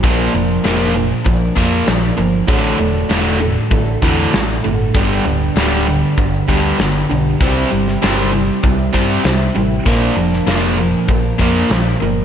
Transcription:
0.03 picked electric bass A#1, overdriven electric guitar A#2 F3 A#3, steel-string acoustic guitar A#2 D3 F3 A#3 D4 A#4, kick, open hi-hat
0.34 picked electric bass F1, overdriven electric guitar A#2 F3
0.64 picked electric bass F1, overdriven electric guitar A#2 F3 A#3, snare, open hi-hat
0.94 overdriven electric guitar A#2 F3, steel-string acoustic guitar F3 A#3 D4 A#4
1.25 picked electric bass A#1, overdriven electric guitar A#2 F3, steel-string acoustic guitar F3 A#3 D4 A#4, kick, open hi-hat
1.55 picked electric bass F2, overdriven electric guitar A#2 F3 A#3, steel-string acoustic guitar F3 A#3 D4 A#4, kick
1.87 picked electric bass A#1, overdriven electric guitar A#2 F3, steel-string acoustic guitar F3 A#3 D4 A#4, snare, open hi-hat
2.17 picked electric bass G1, overdriven electric guitar A#2 F3, steel-string acoustic guitar F3 A#3 D4 A#4
2.47 picked electric bass A1, overdriven electric guitar D2 A2 D3, steel-string acoustic guitar A2 D3 A3 D4 F#4 A4, kick, open hi-hat
2.79 picked electric bass E1, overdriven electric guitar D2 A2
3.10 picked electric bass E1, overdriven electric guitar D2 A2 D3, snare, open hi-hat
3.38 overdriven electric guitar D2 A2, steel-string acoustic guitar A3 D4 F#4 A4
3.70 picked electric bass A1, overdriven electric guitar D2 A2, steel-string acoustic guitar A3 D4 F#4 A4, kick, open hi-hat
4.02 overdriven electric guitar D2 A2 D3, picked electric bass E2, steel-string acoustic guitar A3 D4 F#4 A4, kick
4.31 picked electric bass A1, overdriven electric guitar D2 A2, steel-string acoustic guitar A3 D4 F#4 A4, snare, open hi-hat
4.62 picked electric bass G1, overdriven electric guitar D2 A2, steel-string acoustic guitar A3 D4 F#4 A4
4.94 picked electric bass G1, steel-string acoustic guitar G2 D3 G3 B3 D4 G4, overdriven electric guitar G2 D3 G3, kick, open hi-hat
5.25 picked electric bass D1, overdriven electric guitar G2 D3
5.56 picked electric bass D1, overdriven electric guitar G2 D3 G3, snare, open hi-hat
5.86 overdriven electric guitar G2 D3, steel-string acoustic guitar G3 B3 D4 G4
6.17 picked electric bass G1, overdriven electric guitar G2 D3, steel-string acoustic guitar G3 B3 D4 G4, kick, open hi-hat
6.47 picked electric bass D2, overdriven electric guitar G2 D3 G3, steel-string acoustic guitar G3 B3 D4 G4, kick
6.78 picked electric bass G1, overdriven electric guitar G2 D3, steel-string acoustic guitar G3 B3 D4 G4, snare, open hi-hat
7.09 picked electric bass B1, overdriven electric guitar G2 D3, steel-string acoustic guitar G3 B3 D4 G4
7.39 picked electric bass C2, steel-string acoustic guitar C3 G3 C4 E4 G4, overdriven electric guitar C3 G3 C4, kick, open hi-hat
7.71 picked electric bass G1, overdriven electric guitar C3 G3
7.88 snare
8.02 picked electric bass G1, overdriven electric guitar C3 G3 C4, snare, open hi-hat
8.31 overdriven electric guitar C3 G3, steel-string acoustic guitar C4 E4 G4
8.62 picked electric bass C2, overdriven electric guitar C3 G3, steel-string acoustic guitar G3 C4 E4 G4, kick, open hi-hat
8.93 picked electric bass G2, overdriven electric guitar C3 G3 C4, steel-string acoustic guitar C4 E4 G4, kick
9.24 picked electric bass C2, overdriven electric guitar C3 G3, steel-string acoustic guitar G3 C4 E4 G4, snare, open hi-hat
9.56 picked electric bass A1, overdriven electric guitar C3 G3, steel-string acoustic guitar C4 E4 G4
9.85 picked electric bass A#1, steel-string acoustic guitar A#2 D3 F3 A#3 D4 A#4, overdriven electric guitar A#2 F3 A#3, kick, open hi-hat
10.16 picked electric bass F1, overdriven electric guitar A#2 F3
10.33 snare
10.47 picked electric bass F1, overdriven electric guitar A#2 F3 A#3, snare, open hi-hat
10.78 overdriven electric guitar A#2 F3, steel-string acoustic guitar F3 A#3 D4 A#4
11.07 picked electric bass A#1, overdriven electric guitar A#2 F3, steel-string acoustic guitar F3 A#3 D4 A#4, kick, open hi-hat
11.38 picked electric bass F2, overdriven electric guitar A#2 F3 A#3, steel-string acoustic guitar F3 A#3 D4 A#4, kick
11.69 picked electric bass A#1, overdriven electric guitar A#2 F3, steel-string acoustic guitar F3 A#3 D4 A#4, snare, open hi-hat
12.00 picked electric bass G1, overdriven electric guitar A#2 F3, steel-string acoustic guitar F3 A#3 D4 A#4

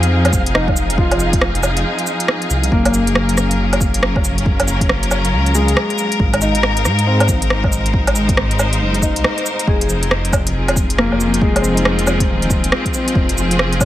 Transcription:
Already playing: detuned saw bass F2, string section F3 C4 D#4 G#4, felt piano C4, synth texture F5
0.03 closed hi-hat
0.25 closed hi-hat, low woodblock
0.33 detuned saw bass F1, kick, cabasa
0.46 closed hi-hat
0.54 felt piano D#4, cross-stick
0.68 kick, low woodblock
0.77 cabasa
0.90 closed hi-hat
0.98 felt piano F4, kick
1.11 closed hi-hat, low woodblock
1.20 cabasa
1.33 kick, closed hi-hat
1.42 cross-stick
1.55 closed hi-hat
1.63 cabasa, low woodblock
1.77 closed hi-hat
1.99 closed hi-hat
2.07 cabasa
2.20 closed hi-hat
2.28 cross-stick
2.42 closed hi-hat
2.50 detuned saw bass C2, cabasa
2.63 closed hi-hat
2.72 detuned saw bass F#1, string section F#3, felt piano A#3, kick
2.85 closed hi-hat, low woodblock
2.94 cabasa
2.99 string section A#4
3.07 closed hi-hat
3.12 string section C#4, cross-stick
3.29 closed hi-hat
3.37 cross-stick, cabasa
3.51 closed hi-hat
3.73 closed hi-hat, low woodblock
3.81 kick, cabasa
3.94 closed hi-hat
4.03 cross-stick
4.16 detuned saw bass F#1, kick, low woodblock
4.24 cabasa
4.38 closed hi-hat
4.46 detuned saw bass F#1, kick
4.60 closed hi-hat, low woodblock
4.68 cabasa
4.81 kick, closed hi-hat
4.89 cross-stick
5.03 closed hi-hat
5.11 cabasa, low woodblock
5.25 closed hi-hat
5.33 detuned saw bass C#2
5.46 closed hi-hat
5.55 felt piano G#3, cabasa
5.68 closed hi-hat
5.77 cross-stick
5.90 closed hi-hat
5.98 cabasa
6.12 closed hi-hat
6.19 detuned saw bass G#1, string section G#3, kick
6.34 string section D#4, closed hi-hat, low woodblock
6.41 felt piano D#4, cabasa
6.55 closed hi-hat
6.63 cross-stick
6.74 string section C5, closed hi-hat
6.85 detuned saw bass G#2, cross-stick, cabasa
6.99 closed hi-hat
7.07 felt piano C4
7.20 closed hi-hat, low woodblock
7.28 detuned saw bass G#1, kick, cabasa
7.42 closed hi-hat
7.50 cross-stick
7.64 kick, low woodblock
7.72 cabasa
7.86 closed hi-hat
7.94 kick
8.07 closed hi-hat, low woodblock
8.16 cabasa
8.29 kick, closed hi-hat
8.37 cross-stick
8.51 closed hi-hat
8.59 cabasa, low woodblock
8.73 closed hi-hat
8.81 detuned saw bass F#1
8.94 closed hi-hat
9.02 felt piano D#4, kick, cabasa
9.16 detuned saw bass C2, closed hi-hat
9.24 cross-stick
9.38 closed hi-hat
9.46 cabasa
9.59 closed hi-hat
9.67 detuned saw bass F1, string section F3, felt piano G#4, kick
9.81 closed hi-hat
9.86 string section C4, cabasa
10.03 closed hi-hat
10.11 cross-stick
10.25 closed hi-hat
10.33 kick, cabasa, low woodblock
10.37 string section F4
10.47 string section G#4, closed hi-hat
10.68 closed hi-hat, low woodblock
10.76 kick, cabasa
10.90 closed hi-hat
10.98 felt piano A#3, cross-stick
11.12 detuned saw bass F1, low woodblock
11.21 cabasa
11.34 closed hi-hat
11.41 detuned saw bass F1, felt piano G#3, kick
11.56 closed hi-hat, low woodblock
11.61 felt piano C4, cabasa
11.74 felt piano D#4, closed hi-hat
11.85 cross-stick
11.99 closed hi-hat
12.07 cabasa, low woodblock
12.20 kick, closed hi-hat
12.29 detuned saw bass D#1
12.42 closed hi-hat
12.50 kick, cabasa
12.64 closed hi-hat
12.72 cross-stick
12.85 kick, closed hi-hat
12.94 felt piano C4, cabasa
13.08 closed hi-hat
13.15 detuned saw bass F1, kick
13.29 closed hi-hat
13.38 cabasa
13.51 closed hi-hat
13.59 cross-stick
13.73 closed hi-hat
13.81 detuned saw bass F2, kick, cabasa, low woodblock

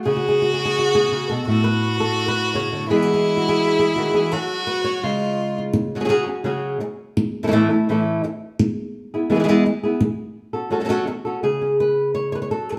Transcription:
0.05 nylon-string guitar C#3 G#4, violin F#4
0.16 nylon-string guitar F#4
0.29 nylon-string guitar G#4
0.42 nylon-string guitar F#4
0.53 nylon-string guitar G#4
0.60 nylon-string guitar F#4
0.65 nylon-string guitar G#4
0.79 nylon-string guitar F#4
0.95 nylon-string guitar G#4
1.12 nylon-string guitar C#3
1.29 nylon-string guitar B2 A4
1.47 nylon-string guitar A2, violin F#4
1.64 nylon-string guitar B4
2.00 nylon-string guitar A4
2.28 nylon-string guitar B4
2.54 nylon-string guitar C#3 C#5
2.72 nylon-string guitar D3
2.90 nylon-string guitar E3 G#3 B3 E4 G#4, violin E4
3.02 nylon-string guitar F#4
3.14 nylon-string guitar G#4
3.37 nylon-string guitar F#4
3.49 nylon-string guitar G#4
3.79 nylon-string guitar G#4
3.96 nylon-string guitar D#3 F#4
4.14 nylon-string guitar E3 G#4
4.32 nylon-string guitar F#3 C#4 F#4 A4, violin F#4
4.67 nylon-string guitar B4
4.84 nylon-string guitar C#5
5.03 nylon-string guitar C#3 G#3 C#4 F4, violin F4
5.58 nylon-string guitar F4
5.74 muted nylon-string guitar stroke
5.95 nylon-string guitar F#3 C#4 F#4 G#4
6.00 nylon-string guitar F#3 C#4 F#4 G#4
6.05 nylon-string guitar F#3 C#4 F#4 G#4
6.09 nylon-string guitar C#3 F#3 C#4 F#4 G#4
6.27 nylon-string guitar C#4 F#4 G#4
6.44 nylon-string guitar C#3 F#3 C#4 F#4 G#4
6.80 muted nylon-string guitar stroke
7.17 muted nylon-string guitar stroke
7.43 nylon-string guitar E3 A3 C#4 E4 A4
7.47 nylon-string guitar E3 A3 C#4 E4 A4
7.51 nylon-string guitar A2 E3 A3 C#4 E4 A4
7.69 nylon-string guitar A3 C#4 E4 A4
7.89 nylon-string guitar A2 E3 A3 C#4 E4 A4
8.24 muted nylon-string guitar stroke
8.59 muted nylon-string guitar stroke
9.14 nylon-string guitar B3 E4 G#4
9.30 nylon-string guitar E3 G#3 B3 E4 G#4
9.34 nylon-string guitar G#3 B3 E4 G#4
9.40 nylon-string guitar G#3 B3 E4 G#4
9.44 nylon-string guitar G#3 B3 E4 G#4
9.48 nylon-string guitar E3 G#3 B3 E4 G#4
9.66 muted nylon-string guitar stroke
9.83 nylon-string guitar B3 E4 G#4
10.01 muted nylon-string guitar stroke
10.53 nylon-string guitar C#4 F#4 A4
10.70 nylon-string guitar F#3 C#4 F#4 A4
10.80 nylon-string guitar F#3 C#4 F#4 A4
10.85 nylon-string guitar F#3 C#4 F#4 A4
10.89 nylon-string guitar F#3 C#4 F#4 A4
11.07 muted nylon-string guitar stroke
11.25 nylon-string guitar C#4 F#4 A4
11.43 nylon-string guitar C#3 G#4
11.62 nylon-string guitar C#4
11.80 nylon-string guitar B4
12.15 nylon-string guitar C#5
12.32 nylon-string guitar B4 C#5
12.42 nylon-string guitar C#5
12.50 nylon-string guitar F#3 A4
12.69 nylon-string guitar G#4 A4

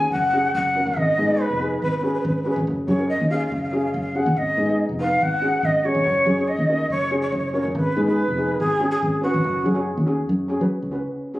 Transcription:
Already playing: steel pan C#4 F#4 G#4
0.12 fingered electric bass F#1, shakuhachi F#5
0.32 steel pan C#4 F#4 G#4
0.54 fingered electric bass F#1, shakuhachi F#5
0.75 steel pan C#4 F#4 A#4
0.86 fingered electric bass F#1
0.97 fingered electric bass G#1, shakuhachi D#5
1.18 fingered electric bass G#2, steel pan B3 D#4 G#4
1.28 steel pan B3 D#4 G#4
1.41 shakuhachi B4
1.50 fingered electric bass F1
1.59 steel pan B3 D#4 G#4
1.82 fingered electric bass G#1, shakuhachi B4
1.91 shakuhachi B4
1.97 shakuhachi B4
2.02 steel pan C#4 F#4 G#4, shakuhachi B4
2.13 shakuhachi B4
2.20 shakuhachi B4
2.25 fingered electric bass G#1, shakuhachi B4
2.36 shakuhachi B4
2.42 steel pan C#4 F#4 G#4, shakuhachi B4
2.50 shakuhachi B4
2.56 fingered electric bass G#1
2.67 fingered electric bass F#1
2.87 fingered electric bass F#2, steel pan C#4 F#4 G#4, shakuhachi C#5
2.98 steel pan C#4 F#4 A#4
3.09 shakuhachi D#5
3.20 fingered electric bass D#2
3.30 steel pan C#4 F#4 G#4, shakuhachi F5
3.38 shakuhachi F5
3.46 shakuhachi F5
3.52 fingered electric bass F#1, shakuhachi F5
3.63 shakuhachi F5
3.69 steel pan C#4 F#4, shakuhachi F5
3.74 steel pan G#4, shakuhachi F5
3.85 shakuhachi F5
3.92 fingered electric bass F#1, shakuhachi F5
4.00 shakuhachi F5
4.15 steel pan C#4 F#4 G#4, shakuhachi F#5
4.26 fingered electric bass D#2
4.36 fingered electric bass G#1, shakuhachi D#5
4.57 fingered electric bass G#2, steel pan B3 D#4 G#4
4.68 steel pan B3 D#4 G#4
4.89 fingered electric bass F1
4.99 steel pan B3 D#4 B4, shakuhachi F5
5.21 fingered electric bass G#1, shakuhachi F#5
5.41 steel pan C#4 F#4 G#4
5.63 fingered electric bass G#1, shakuhachi D#5
5.84 steel pan C#4 F#4 G#4, shakuhachi C#5
5.95 fingered electric bass G#1
6.05 fingered electric bass F#1
6.26 fingered electric bass F#2, steel pan C#4 F#4 G#4
6.37 steel pan C#4 F#4 G#4
6.48 shakuhachi D#5
6.58 fingered electric bass D#2
6.68 steel pan C#4 F#4 A#4
6.90 fingered electric bass F#1, shakuhachi C#5
7.11 steel pan C#4 F#4 G#4
7.22 shakuhachi C#5
7.30 fingered electric bass F#1, shakuhachi C#5
7.37 shakuhachi C#5
7.45 shakuhachi C#5
7.53 steel pan C#4 F#4 A#4, shakuhachi C#5
7.60 shakuhachi C#5
7.65 fingered electric bass F#1
7.75 fingered electric bass G#1, shakuhachi B4
7.95 fingered electric bass G#2, steel pan B3 D#4 G#4
8.06 steel pan B3 D#4 G#4, shakuhachi B4
8.28 fingered electric bass F1
8.37 steel pan B3 D#4 G#4
8.59 fingered electric bass G#1, shakuhachi G#4
8.80 steel pan C#4 F#4 G#4
8.91 shakuhachi G#4
9.02 fingered electric bass G#1
9.22 steel pan C#4 F#4 B4, shakuhachi F#4
9.34 fingered electric bass G#1
9.44 fingered electric bass F#1
9.64 fingered electric bass F#2, steel pan C#4 F#4 G#4
9.74 steel pan C#4 F#4 G#4
9.97 fingered electric bass D#2
10.06 steel pan C#4 F#4 G#4
10.29 fingered electric bass F#2
10.48 steel pan C#4 F#4 G#4
10.60 fingered electric bass F#3, steel pan C#4 F#4 B4
10.82 fingered electric bass C#2
10.91 steel pan C#4 F#4 B4
11.34 steel pan C#4 F#4 G#4

